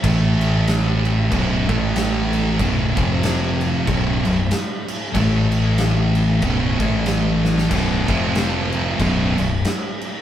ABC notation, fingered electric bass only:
X:1
M:4/4
L:1/8
Q:"Swing" 1/4=94
K:Ador
V:1 name="Fingered electric bass" clef=bass
A,,,4 B,,,, A,,,3 | B,,,, =F,,,3 B,,,, B,,,, z2 | A,,,4 B,,,, A,,,3 | B,,,, =F,,,3 B,,,, B,,,, z2 |]